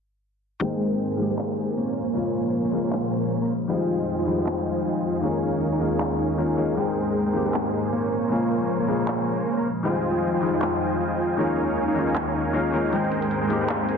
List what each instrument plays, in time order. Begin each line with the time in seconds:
0.60 analog synth pad G#2 C4 A#4, grand piano D#3 G#3 A#3 C4, supersaw synth G#3 G#4 A#4 C5 G5
0.64 grand piano G5
1.11 supersaw synth G#3 G#4 A#4 C5 G5
1.17 grand piano D#3 G#3 A#3 C4
1.21 grand piano G4
1.30 supersaw synth G#3 G#4 A#4 C5 G5
1.39 clap
1.58 supersaw synth G#3 G#4 A#4 C5 G#5
1.77 supersaw synth A#3 A#4 C5 C#5 G#5
1.96 analog synth pad A#2 F3
2.14 grand piano C#3 G#3 A#3 F4, supersaw synth A#3 A#4 C5 C#5 G#5
2.65 supersaw synth A#3 A#4 C5 C#5 G#5
2.71 grand piano C#3 G#3 A#3 F4
2.84 supersaw synth A#3 A#4 C5 C#5 G#5
2.92 clap
3.41 supersaw synth A#3 A#4 C5 C#5 A#5
3.67 analog synth pad F2 D#4, grand piano D#3 G3 G#3 C4, supersaw synth F4 C5 D#5 G5 G#5
3.72 grand piano F4
4.18 supersaw synth F4 C5 D#5 G5 G#5
4.25 grand piano D#3 G3 G#3 C4
4.29 grand piano F4
4.38 supersaw synth F4 C5 D#5 G5 G#5
4.46 clap
4.66 supersaw synth F4 C5 D#5 G5 G#5
4.85 supersaw synth F4 C5 D#5 G5 G#5
5.21 analog synth pad D#2 D#3 C#4 G#4, grand piano D#3 G#3 A#3 C#4, supersaw synth D#4 A#4 C#5 F5 G#5
5.25 grand piano F4
5.72 supersaw synth D#4 A#4 C#5 F5 G#5
5.79 grand piano D#3 G#3 A#3 C#4 F4
5.91 supersaw synth D#4 A#4 C#5 F5 G#5
6.00 clap
6.38 grand piano D#3 G#3 A#3 C#4 F4, supersaw synth D#4 A#4 C#5 F5 G#5
6.57 grand piano D#3 G#3 A#3 C#4 F4, supersaw synth D#4 A#4 C#5 F5 G#5
6.75 analog synth pad G#2 C4 A#4, grand piano D#3 G#3 A#3 C4 G5, supersaw synth G#3 G#4 A#4 C5 G5
7.26 supersaw synth G#3 G#4 A#4 C5 G5
7.33 grand piano D#3 G#3 A#3 C4 G4
7.46 supersaw synth G#3 G#4 A#4 C5 G5
7.54 clap
7.73 supersaw synth G#3 G#4 A#4 C5 G#5
7.92 supersaw synth A#3 A#4 C5 C#5 G#5
8.12 analog synth pad A#2 F3
8.29 grand piano C#3 G#3 A#3 F4, supersaw synth A#3 A#4 C5 C#5 G#5
8.80 supersaw synth A#3 A#4 C5 C#5 G#5
8.87 grand piano C#3 G#3 A#3
8.91 grand piano F4
8.99 supersaw synth A#3 A#4 C5 C#5 G#5
9.08 clap
9.57 supersaw synth A#3 A#4 C5 C#5 A#5
9.83 analog synth pad F2 D#4, grand piano D#3 G3 G#3 C4, supersaw synth F4 C5 D#5 G5 G#5
9.87 grand piano F4
10.34 supersaw synth F4 C5 D#5 G5 G#5
10.41 grand piano D#3 G3 G#3 C4 F4
10.53 supersaw synth F4 C5 D#5 G5 G#5
10.62 clap
10.81 supersaw synth F4 C5 D#5 G5 G#5
11.00 supersaw synth F4 C5 D#5 G5 G#5
11.37 analog synth pad D#2 D#3 C#4, grand piano D#3 G#3 A#3 C#4 F4, supersaw synth D#4 A#4 C#5 F5 G#5
11.88 supersaw synth D#4 A#4 C#5 F5 G#5
11.94 grand piano D#3 G#3 A#3 C#4 F4
12.07 supersaw synth D#4 A#4 C#5 F5 G#5
12.16 clap
12.53 grand piano D#3 G#3 A#3 C#4 F4, supersaw synth D#4 A#4 C#5 F5 G#5
12.72 grand piano D#3 G#3 A#3 C#4 F4, supersaw synth D#4 A#4 C#5 F5 G#5
12.91 analog synth pad G#2 C4 A#4, grand piano D#3 G#3 A#3 C4 G5, supersaw synth G#3 G#4 A#4 C5 G5, closed hi-hat
13.12 closed hi-hat
13.22 closed hi-hat
13.31 closed hi-hat
13.41 supersaw synth G#3 G#4 A#4 C5 G5
13.48 grand piano D#3 G#3 A#3 C4, closed hi-hat
13.52 grand piano G4
13.61 supersaw synth G#3 G#4 A#4 C5 G5
13.69 clap, closed hi-hat
13.89 supersaw synth G#3 G#4 A#4 C5 G#5, closed hi-hat